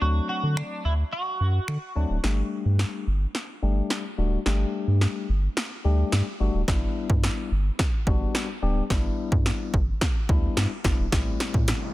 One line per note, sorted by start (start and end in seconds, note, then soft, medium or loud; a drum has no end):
0.01 0.21 D2 loud
0.01 0.83 F#3 medium
0.01 0.83 A3 medium
0.01 0.83 C4 medium
0.01 0.83 D4 medium
0.01 0.28 F#4 loud
0.29 0.58 F#4 medium
0.43 0.62 D3 loud
0.57 0.83 D4 medium
0.57 finger snap loud
0.85 1.04 D2 loud
0.85 0.93 E4 medium
1.13 1.92 F#4 medium
1.40 1.59 F#2 medium
1.68 1.78 D3 loud
1.68 finger snap loud
1.96 2.05 D2 medium
1.96 2.16 F#3 medium
1.96 2.16 A3 medium
1.96 2.16 C4 medium
1.96 2.16 D4 loud
2.10 2.19 D1 medium
2.23 2.43 G1 loud
2.23 3.05 G3 medium
2.23 3.05 A3 medium
2.23 3.05 D4 medium
2.23 3.05 G4 medium
2.23 snare medium
2.65 2.85 G2 loud
2.79 snare medium
3.07 3.26 G1 medium
3.35 snare medium
3.62 3.82 G1 medium
3.62 4.03 G3 medium
3.62 4.03 A3 medium
3.62 4.03 D4 medium
3.62 4.03 G4 loud
3.90 snare medium
4.18 4.37 D1 loud
4.18 4.38 G3 medium
4.18 4.38 A3 medium
4.18 4.39 D4 medium
4.18 4.39 F#4 medium
4.46 4.65 G1 loud
4.46 5.27 G3 medium
4.46 5.27 A3 medium
4.46 5.27 D4 medium
4.46 5.27 G4 medium
4.46 snare medium
4.87 5.07 G2 loud
5.01 snare medium
5.29 5.48 G1 medium
5.57 snare medium
5.84 6.04 D2 medium
5.84 6.25 G3 medium
5.84 6.25 A3 medium
5.84 6.25 D4 medium
5.84 6.26 G4 loud
6.12 6.22 G2 loud
6.12 snare medium
6.40 6.50 G1 medium
6.40 6.61 G3 medium
6.40 6.61 A3 medium
6.40 6.61 D4 medium
6.40 6.61 F#4 medium
6.54 6.64 D1 medium
6.68 6.87 G1 loud
6.68 7.49 G3 medium
6.68 7.49 B3 medium
6.68 7.49 D4 medium
6.68 7.49 E4 loud
6.68 kick loud
6.68 snare medium
7.10 7.29 G2 loud
7.10 kick medium
7.24 snare medium
7.51 7.71 G1 loud
7.79 kick medium
7.79 snare medium
8.07 8.26 G1 medium
8.07 8.48 G3 medium
8.07 8.48 B3 medium
8.07 8.48 D4 medium
8.07 8.48 F#4 loud
8.07 kick medium
8.35 snare medium
8.62 8.82 D1 medium
8.62 8.83 G3 medium
8.62 8.83 B3 medium
8.62 8.83 D4 medium
8.62 8.83 G4 loud
8.90 9.09 G1 loud
8.90 9.71 G3 medium
8.90 9.72 B3 medium
8.90 9.72 D4 medium
8.90 9.72 E4 loud
8.90 kick loud
8.90 snare medium
9.32 9.51 G2 loud
9.32 kick medium
9.46 snare medium
9.74 9.93 G1 medium
9.74 kick medium
10.01 kick medium
10.01 snare medium
10.29 10.48 D2 medium
10.29 10.70 G3 medium
10.29 10.70 B3 medium
10.29 10.70 D4 medium
10.29 10.70 E4 loud
10.29 kick medium
10.57 10.66 G2 loud
10.57 snare medium
10.84 10.94 G1 medium
10.84 11.05 G3 medium
10.84 11.05 B3 medium
10.84 11.05 D4 medium
10.84 11.05 E4 medium
10.84 kick medium
10.84 snare medium
10.99 11.08 E1 medium
11.12 11.32 A1 loud
11.12 11.94 G3 medium
11.12 11.94 A3 medium
11.12 11.94 C4 medium
11.12 11.94 E4 medium
11.12 kick loud
11.12 snare medium
11.12 closed hi-hat medium
11.12 riser medium
11.40 snare medium
11.40 closed hi-hat medium
11.54 11.73 A2 loud
11.54 kick medium
11.68 snare medium
11.68 closed hi-hat loud